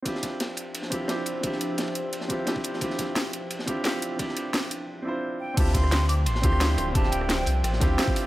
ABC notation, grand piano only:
X:1
M:4/4
L:1/8
Q:1/4=174
K:Dm
V:1 name="Grand piano"
[CDEFG]4- [CDEFG] [CDEFG] [CDEFG]2 | [CDEFG]4- [CDEFG] [CDEFG] [CDEFG]2 | [CDEFG]4- [CDEFG] [CDEFG] [CDEFG]2 | [CDEFG]4- [CDEFG] [CDEFc]3 |
[CDEFG]4- [CDEFG] [CDEFG] [CDEFG]2 | [CDEFG]4- [CDEFG] [CDEFG] [CDEFG]2 |]